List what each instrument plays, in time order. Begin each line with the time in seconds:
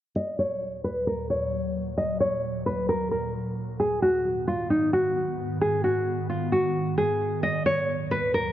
0.16 ambient pad D#2 A#2 F#3, nylon-string guitar D#5
0.39 nylon-string guitar C#5
0.84 nylon-string guitar B4
1.07 nylon-string guitar A#4
1.30 nylon-string guitar C#5
1.98 nylon-string guitar D#5
2.20 nylon-string guitar C#5
2.66 nylon-string guitar B4
2.89 nylon-string guitar A#4
3.11 nylon-string guitar A#4
3.80 ambient pad G#2 D#3 B3, nylon-string guitar G#4
4.02 nylon-string guitar F#4
4.48 nylon-string guitar F4
4.70 nylon-string guitar D#4
4.93 nylon-string guitar F#4
5.61 nylon-string guitar G#4
5.84 nylon-string guitar F#4
6.30 nylon-string guitar F4
6.52 nylon-string guitar F#4
6.98 nylon-string guitar G#4
7.43 ambient pad D#2 A#2 F#3, nylon-string guitar D#5
7.66 nylon-string guitar C#5
8.11 nylon-string guitar B4
8.34 nylon-string guitar A#4